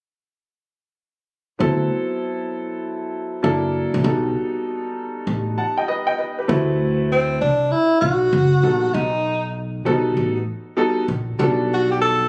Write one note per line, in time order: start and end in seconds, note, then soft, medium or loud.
1.59 1.84 D2 medium
1.59 3.39 F#3 medium
1.59 3.39 B3 medium
1.59 3.40 C4 soft
1.59 3.40 E4 soft
1.59 3.40 A4 medium
3.42 3.83 F#1 medium
3.42 4.04 F#3 medium
3.42 4.04 A#3 medium
3.42 4.05 D4 medium
3.42 4.05 E4 medium
3.42 4.04 A4 medium
3.94 4.02 A#1 medium
4.03 4.28 B1 loud
4.03 6.45 G3 medium
4.03 6.45 B3 medium
4.03 6.45 D#4 medium
4.03 5.55 F#4 medium
4.03 5.55 A4 medium
5.27 5.51 A1 medium
5.58 5.77 F#5 soft
5.58 5.77 A5 medium
5.78 5.87 D#5 soft
5.78 5.88 G5 medium
5.88 6.07 B4 medium
5.88 6.06 D#5 medium
6.07 6.17 D#5 medium
6.07 6.17 G5 medium
6.18 6.37 B4 soft
6.18 6.37 D#5 medium
6.39 6.68 G4 soft
6.39 6.47 B4 medium
6.48 7.37 D2 medium
6.48 7.36 A3 medium
6.48 7.36 C4 medium
6.48 7.37 E4 medium
6.48 7.37 F#4 medium
6.48 7.37 B4 medium
7.12 7.40 C4 medium
7.41 7.65 C2 medium
7.41 7.73 D4 medium
7.71 8.00 E4 medium
8.01 8.26 B1 medium
8.01 8.95 F#4 loud
8.33 8.56 F#1 medium
8.63 8.87 A#1 medium
8.63 9.02 G3 medium
8.63 9.02 B3 medium
8.63 9.02 D#4 soft
8.63 9.02 F#4 soft
8.63 9.02 A4 medium
8.94 9.82 B1 loud
8.94 9.55 D#4 medium
9.85 10.10 B1 medium
9.85 10.32 G3 medium
9.85 10.32 B3 medium
9.85 9.94 C4 medium
9.85 10.32 F#4 medium
9.85 10.33 A4 medium
9.92 10.35 D#4 medium
10.17 10.40 A1 medium
10.77 11.01 G3 medium
10.77 11.01 B3 medium
10.77 11.02 D#4 medium
10.77 11.02 F#4 medium
10.77 11.02 A4 medium
11.08 11.32 A#1 medium
11.39 12.27 B1 loud
11.39 12.26 G3 medium
11.39 12.27 B3 medium
11.39 12.27 D4 medium
11.39 12.27 F#4 medium
11.39 12.27 A4 medium
11.73 11.90 F#4 medium
11.91 12.00 G4 medium
12.01 12.29 A4 loud